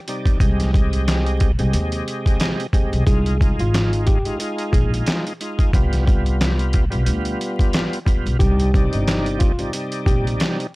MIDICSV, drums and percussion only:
0, 0, Header, 1, 2, 480
1, 0, Start_track
1, 0, Key_signature, -3, "minor"
1, 0, Tempo, 666667
1, 288, Time_signature, 4, 2, 24, 8
1, 7740, End_track
2, 0, Start_track
2, 0, Title_t, "Drums"
2, 55, Note_on_c, 9, 42, 79
2, 127, Note_off_c, 9, 42, 0
2, 184, Note_on_c, 9, 36, 89
2, 192, Note_on_c, 9, 42, 50
2, 256, Note_off_c, 9, 36, 0
2, 264, Note_off_c, 9, 42, 0
2, 289, Note_on_c, 9, 36, 122
2, 293, Note_on_c, 9, 42, 94
2, 361, Note_off_c, 9, 36, 0
2, 365, Note_off_c, 9, 42, 0
2, 431, Note_on_c, 9, 42, 58
2, 437, Note_on_c, 9, 38, 39
2, 503, Note_off_c, 9, 42, 0
2, 509, Note_off_c, 9, 38, 0
2, 535, Note_on_c, 9, 36, 110
2, 543, Note_on_c, 9, 42, 65
2, 607, Note_off_c, 9, 36, 0
2, 615, Note_off_c, 9, 42, 0
2, 670, Note_on_c, 9, 42, 55
2, 742, Note_off_c, 9, 42, 0
2, 776, Note_on_c, 9, 42, 93
2, 778, Note_on_c, 9, 38, 122
2, 783, Note_on_c, 9, 39, 95
2, 848, Note_off_c, 9, 42, 0
2, 850, Note_off_c, 9, 38, 0
2, 855, Note_off_c, 9, 39, 0
2, 911, Note_on_c, 9, 42, 51
2, 983, Note_off_c, 9, 42, 0
2, 1010, Note_on_c, 9, 42, 82
2, 1014, Note_on_c, 9, 36, 102
2, 1082, Note_off_c, 9, 42, 0
2, 1086, Note_off_c, 9, 36, 0
2, 1143, Note_on_c, 9, 42, 52
2, 1215, Note_off_c, 9, 42, 0
2, 1248, Note_on_c, 9, 42, 106
2, 1320, Note_off_c, 9, 42, 0
2, 1382, Note_on_c, 9, 42, 61
2, 1454, Note_off_c, 9, 42, 0
2, 1496, Note_on_c, 9, 42, 80
2, 1568, Note_off_c, 9, 42, 0
2, 1627, Note_on_c, 9, 36, 85
2, 1637, Note_on_c, 9, 42, 57
2, 1699, Note_off_c, 9, 36, 0
2, 1709, Note_off_c, 9, 42, 0
2, 1727, Note_on_c, 9, 42, 92
2, 1735, Note_on_c, 9, 38, 127
2, 1740, Note_on_c, 9, 39, 102
2, 1799, Note_off_c, 9, 42, 0
2, 1807, Note_off_c, 9, 38, 0
2, 1812, Note_off_c, 9, 39, 0
2, 1871, Note_on_c, 9, 42, 50
2, 1943, Note_off_c, 9, 42, 0
2, 1966, Note_on_c, 9, 36, 95
2, 1972, Note_on_c, 9, 42, 79
2, 2038, Note_off_c, 9, 36, 0
2, 2044, Note_off_c, 9, 42, 0
2, 2110, Note_on_c, 9, 42, 52
2, 2182, Note_off_c, 9, 42, 0
2, 2208, Note_on_c, 9, 36, 122
2, 2211, Note_on_c, 9, 42, 94
2, 2280, Note_off_c, 9, 36, 0
2, 2283, Note_off_c, 9, 42, 0
2, 2348, Note_on_c, 9, 42, 60
2, 2420, Note_off_c, 9, 42, 0
2, 2454, Note_on_c, 9, 36, 108
2, 2461, Note_on_c, 9, 42, 65
2, 2526, Note_off_c, 9, 36, 0
2, 2533, Note_off_c, 9, 42, 0
2, 2588, Note_on_c, 9, 42, 56
2, 2660, Note_off_c, 9, 42, 0
2, 2695, Note_on_c, 9, 42, 90
2, 2696, Note_on_c, 9, 38, 119
2, 2701, Note_on_c, 9, 39, 96
2, 2767, Note_off_c, 9, 42, 0
2, 2768, Note_off_c, 9, 38, 0
2, 2773, Note_off_c, 9, 39, 0
2, 2829, Note_on_c, 9, 42, 54
2, 2901, Note_off_c, 9, 42, 0
2, 2928, Note_on_c, 9, 42, 80
2, 2934, Note_on_c, 9, 36, 98
2, 3000, Note_off_c, 9, 42, 0
2, 3006, Note_off_c, 9, 36, 0
2, 3063, Note_on_c, 9, 42, 52
2, 3135, Note_off_c, 9, 42, 0
2, 3167, Note_on_c, 9, 42, 101
2, 3239, Note_off_c, 9, 42, 0
2, 3301, Note_on_c, 9, 42, 60
2, 3373, Note_off_c, 9, 42, 0
2, 3405, Note_on_c, 9, 36, 102
2, 3414, Note_on_c, 9, 42, 80
2, 3477, Note_off_c, 9, 36, 0
2, 3486, Note_off_c, 9, 42, 0
2, 3555, Note_on_c, 9, 42, 58
2, 3627, Note_off_c, 9, 42, 0
2, 3647, Note_on_c, 9, 42, 89
2, 3655, Note_on_c, 9, 38, 127
2, 3660, Note_on_c, 9, 39, 104
2, 3719, Note_off_c, 9, 42, 0
2, 3727, Note_off_c, 9, 38, 0
2, 3732, Note_off_c, 9, 39, 0
2, 3792, Note_on_c, 9, 42, 50
2, 3864, Note_off_c, 9, 42, 0
2, 3893, Note_on_c, 9, 42, 82
2, 3965, Note_off_c, 9, 42, 0
2, 4023, Note_on_c, 9, 36, 89
2, 4031, Note_on_c, 9, 42, 51
2, 4095, Note_off_c, 9, 36, 0
2, 4103, Note_off_c, 9, 42, 0
2, 4128, Note_on_c, 9, 36, 127
2, 4131, Note_on_c, 9, 42, 95
2, 4200, Note_off_c, 9, 36, 0
2, 4203, Note_off_c, 9, 42, 0
2, 4268, Note_on_c, 9, 42, 60
2, 4274, Note_on_c, 9, 38, 37
2, 4340, Note_off_c, 9, 42, 0
2, 4346, Note_off_c, 9, 38, 0
2, 4374, Note_on_c, 9, 36, 109
2, 4381, Note_on_c, 9, 42, 64
2, 4446, Note_off_c, 9, 36, 0
2, 4453, Note_off_c, 9, 42, 0
2, 4508, Note_on_c, 9, 42, 54
2, 4580, Note_off_c, 9, 42, 0
2, 4614, Note_on_c, 9, 42, 90
2, 4616, Note_on_c, 9, 38, 117
2, 4621, Note_on_c, 9, 39, 95
2, 4686, Note_off_c, 9, 42, 0
2, 4688, Note_off_c, 9, 38, 0
2, 4693, Note_off_c, 9, 39, 0
2, 4747, Note_on_c, 9, 42, 53
2, 4819, Note_off_c, 9, 42, 0
2, 4846, Note_on_c, 9, 42, 83
2, 4853, Note_on_c, 9, 36, 101
2, 4918, Note_off_c, 9, 42, 0
2, 4925, Note_off_c, 9, 36, 0
2, 4981, Note_on_c, 9, 42, 53
2, 5053, Note_off_c, 9, 42, 0
2, 5086, Note_on_c, 9, 42, 102
2, 5158, Note_off_c, 9, 42, 0
2, 5221, Note_on_c, 9, 42, 60
2, 5293, Note_off_c, 9, 42, 0
2, 5336, Note_on_c, 9, 42, 80
2, 5408, Note_off_c, 9, 42, 0
2, 5467, Note_on_c, 9, 36, 86
2, 5476, Note_on_c, 9, 42, 57
2, 5539, Note_off_c, 9, 36, 0
2, 5548, Note_off_c, 9, 42, 0
2, 5568, Note_on_c, 9, 42, 90
2, 5576, Note_on_c, 9, 38, 125
2, 5581, Note_on_c, 9, 39, 103
2, 5640, Note_off_c, 9, 42, 0
2, 5648, Note_off_c, 9, 38, 0
2, 5653, Note_off_c, 9, 39, 0
2, 5712, Note_on_c, 9, 42, 52
2, 5784, Note_off_c, 9, 42, 0
2, 5807, Note_on_c, 9, 36, 97
2, 5814, Note_on_c, 9, 42, 81
2, 5879, Note_off_c, 9, 36, 0
2, 5886, Note_off_c, 9, 42, 0
2, 5952, Note_on_c, 9, 42, 52
2, 6024, Note_off_c, 9, 42, 0
2, 6049, Note_on_c, 9, 36, 126
2, 6052, Note_on_c, 9, 42, 95
2, 6121, Note_off_c, 9, 36, 0
2, 6124, Note_off_c, 9, 42, 0
2, 6189, Note_on_c, 9, 42, 59
2, 6261, Note_off_c, 9, 42, 0
2, 6294, Note_on_c, 9, 36, 111
2, 6301, Note_on_c, 9, 42, 66
2, 6366, Note_off_c, 9, 36, 0
2, 6373, Note_off_c, 9, 42, 0
2, 6428, Note_on_c, 9, 42, 56
2, 6500, Note_off_c, 9, 42, 0
2, 6534, Note_on_c, 9, 42, 90
2, 6536, Note_on_c, 9, 38, 123
2, 6541, Note_on_c, 9, 39, 98
2, 6606, Note_off_c, 9, 42, 0
2, 6608, Note_off_c, 9, 38, 0
2, 6613, Note_off_c, 9, 39, 0
2, 6668, Note_on_c, 9, 42, 53
2, 6740, Note_off_c, 9, 42, 0
2, 6769, Note_on_c, 9, 42, 82
2, 6774, Note_on_c, 9, 36, 101
2, 6841, Note_off_c, 9, 42, 0
2, 6846, Note_off_c, 9, 36, 0
2, 6903, Note_on_c, 9, 42, 51
2, 6975, Note_off_c, 9, 42, 0
2, 7007, Note_on_c, 9, 42, 106
2, 7079, Note_off_c, 9, 42, 0
2, 7142, Note_on_c, 9, 42, 61
2, 7214, Note_off_c, 9, 42, 0
2, 7245, Note_on_c, 9, 36, 103
2, 7256, Note_on_c, 9, 42, 80
2, 7317, Note_off_c, 9, 36, 0
2, 7328, Note_off_c, 9, 42, 0
2, 7396, Note_on_c, 9, 42, 57
2, 7468, Note_off_c, 9, 42, 0
2, 7488, Note_on_c, 9, 42, 93
2, 7496, Note_on_c, 9, 38, 126
2, 7501, Note_on_c, 9, 39, 103
2, 7560, Note_off_c, 9, 42, 0
2, 7568, Note_off_c, 9, 38, 0
2, 7573, Note_off_c, 9, 39, 0
2, 7632, Note_on_c, 9, 42, 52
2, 7704, Note_off_c, 9, 42, 0
2, 7740, End_track
0, 0, End_of_file